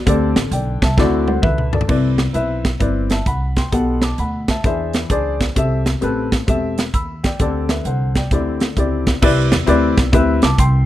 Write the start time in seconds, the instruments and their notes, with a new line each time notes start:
0.06 upright bass D2, grand piano D3 C4 G4 A4 D5, kick, closed hi-hat
0.36 upright bass A1, snare, closed hi-hat
0.51 upright bass B1, grand piano D5 G5, closed hi-hat
0.82 upright bass C2, grand piano E5 A5, kick, snare, closed hi-hat
0.97 upright bass D2, grand piano D3 C4 E4 F#4 D5, kick, snare
1.27 grand piano C5 F#5, high tom
1.42 upright bass C#2, grand piano B4 E5, kick, mid tom
1.58 mid tom
1.73 grand piano A4 D5, floor tom
1.81 floor tom
1.88 upright bass C2, grand piano C3 C4 E4 B4 D5, kick, crash
2.18 snare, closed hi-hat
2.33 upright bass B1, grand piano C4 E4 B4 E5, closed hi-hat
2.65 kick, snare, closed hi-hat
2.80 upright bass G1, grand piano C4 E4 B4 D5, kick, closed hi-hat
3.10 grand piano E5 A5, snare, closed hi-hat
3.26 upright bass C2, grand piano F#5 B5, kick, closed hi-hat
3.56 grand piano G5 C6, kick, snare, closed hi-hat
3.72 upright bass B1, grand piano B2 B3 G4 A4 F#5, kick, closed hi-hat
4.02 grand piano A5 D6, snare, closed hi-hat
4.18 upright bass D2, grand piano F#5 B5, closed hi-hat
4.48 grand piano E5 A5, kick, snare, closed hi-hat
4.64 upright bass E2, grand piano E3 D4 G#4 C5 E5, kick, closed hi-hat
4.94 snare, closed hi-hat
5.10 upright bass C#2, grand piano D4 G#4 C5 D5, kick, closed hi-hat
5.41 kick, snare, closed hi-hat
5.56 upright bass C2, grand piano C3 C4 G4 A4 E5, kick, closed hi-hat
5.86 snare, closed hi-hat
6.01 upright bass A1, grand piano C4 G4 A4 B4, closed hi-hat
6.32 kick, snare, closed hi-hat
6.47 upright bass E1, grand piano C4 G4 A4 E5, kick, closed hi-hat
6.78 snare, closed hi-hat
6.94 upright bass D#2, grand piano B5 E6, kick, closed hi-hat
7.24 grand piano D5 G5, kick, snare, closed hi-hat
7.39 upright bass D2, grand piano D3 C4 G4 A4 D5, kick, closed hi-hat
7.69 grand piano B4 E5, snare, closed hi-hat
7.85 upright bass C2, grand piano C5 F#5, closed hi-hat
8.15 grand piano D5 G5, kick, snare, closed hi-hat
8.31 upright bass D2, grand piano D3 C4 E4 G4 D5, kick, closed hi-hat
8.60 snare, closed hi-hat
8.77 upright bass C#2, grand piano C4 E4 G4 D5, kick, closed hi-hat
9.07 kick, snare, closed hi-hat
9.22 upright bass C2, grand piano C3 C4 E4 G4 B4 D5, kick, crash
9.52 upright bass E2, snare, closed hi-hat
9.66 upright bass D2, grand piano C4 E4 G4 B4 D5, closed hi-hat
9.97 upright bass B1, kick, snare, closed hi-hat
10.12 upright bass D2, grand piano C4 E4 G4 B4 E5, kick, closed hi-hat
10.42 upright bass C2, grand piano A5 D6, snare, closed hi-hat
10.58 upright bass C2, grand piano G5 C6, kick, closed hi-hat